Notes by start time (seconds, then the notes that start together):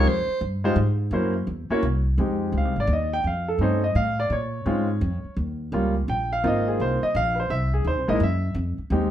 0.04 F2 C5
0.27 muted upright bass stroke
0.41 G2
0.64 G#3 D#4 F4 G4 C5
0.76 G#2
1.11 F#2 A#3 C#4 E4 F#4 C5
1.47 E2
1.70 A#3 C#4 E4 F#4 C#5, muted upright bass stroke
1.83 C2
2.18 F2 G#3 C4 D#4 G4
2.52 C#2
2.58 F5
2.65 C2
2.76 G#1
2.80 D5
2.87 D#2
2.93 D#5
3.13 G5
3.24 F2 F5
3.48 A4
3.58 G2 A3 C4 C#4 D#4
3.63 C5
3.84 D#5
3.95 A2 F5
4.20 D5
4.30 A#2 C#5
4.66 G#2 G#3 C4 C#4 F4
5.01 F2
5.24 muted upright bass stroke
5.37 D#2
5.72 C#2 G3 A#3 C#4 F4
6.08 A#1 G5
6.33 F5
6.43 G#1 A#3 C4 D#4 F4 D#5
6.68 G#4
6.80 C2 C5
7.02 D#5, muted upright bass stroke
7.15 A#1 F5
7.35 B4
7.40 C5
7.50 C2 E5
7.74 G#4
7.84 D#2 C5
7.97 C2
8.08 A#1 G#3 A#3 D#4 E4 D#5
8.20 F#2 E5
8.55 F2
8.78 muted upright bass stroke
8.90 D#2 G#3 C4 D#4 G4